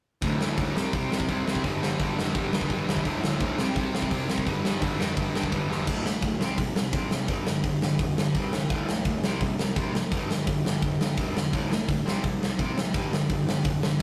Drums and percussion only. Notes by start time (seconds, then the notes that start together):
0.22 kick, open hi-hat
0.41 snare
0.58 kick, open hi-hat
0.77 snare
0.93 kick, open hi-hat
1.12 snare
1.20 kick
1.29 kick, open hi-hat
1.48 snare
1.55 kick
1.64 kick, open hi-hat
1.83 snare
2.00 kick, open hi-hat
2.19 snare
2.35 kick, open hi-hat
2.53 snare
2.61 kick
2.70 kick, open hi-hat
2.89 snare
2.97 kick
3.05 kick, open hi-hat
3.24 snare
3.40 kick, open hi-hat
3.59 snare
3.76 kick, open hi-hat
3.95 snare
4.02 kick
4.11 kick, open hi-hat
4.30 snare
4.38 kick
4.47 kick, open hi-hat
4.65 snare
4.82 kick, open hi-hat
5.01 snare
5.17 kick, open hi-hat
5.35 snare
5.43 kick
5.52 kick, open hi-hat
5.72 snare
5.87 kick, crash
6.06 snare
6.22 kick, open hi-hat
6.41 snare
6.58 kick, open hi-hat
6.76 snare
6.93 kick, open hi-hat
7.11 snare
7.28 kick, open hi-hat
7.47 snare
7.64 kick, open hi-hat
7.82 snare
7.99 kick, open hi-hat
8.18 snare
8.35 kick, open hi-hat
8.53 snare
8.70 kick, open hi-hat
8.89 snare
9.05 kick, open hi-hat
9.24 snare
9.41 kick, open hi-hat
9.59 snare
9.76 kick, open hi-hat
9.95 snare
10.12 kick, open hi-hat
10.31 snare
10.47 kick, open hi-hat
10.66 snare
10.82 kick, open hi-hat
11.01 snare
11.17 kick, open hi-hat
11.37 snare
11.53 kick, open hi-hat
11.72 snare
11.89 kick, open hi-hat
12.08 snare
12.24 kick, open hi-hat
12.43 snare
12.59 kick, open hi-hat
12.78 snare
12.94 kick, open hi-hat
13.13 snare
13.29 kick, open hi-hat
13.49 snare
13.64 kick, open hi-hat
13.83 snare